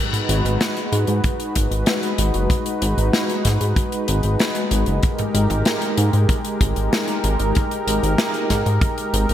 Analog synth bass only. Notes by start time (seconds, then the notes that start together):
0.29 G#1
0.45 G#1
0.92 G#2
1.08 G#2
1.56 G#1
1.71 G#1
2.19 G#1
2.34 F#1
2.82 G#1
2.98 G#1
3.45 G#2
3.61 G#2
4.08 G#1
4.24 G#1
4.71 G#1
4.87 F#1
5.34 G#1
5.50 G#1
5.98 G#2
6.13 G#2
6.61 G#1
6.77 G#1
7.24 G#1
7.40 G#1
7.87 G#1
8.03 G#1
8.50 G#2
8.66 G#2
9.13 G#1
9.29 G#1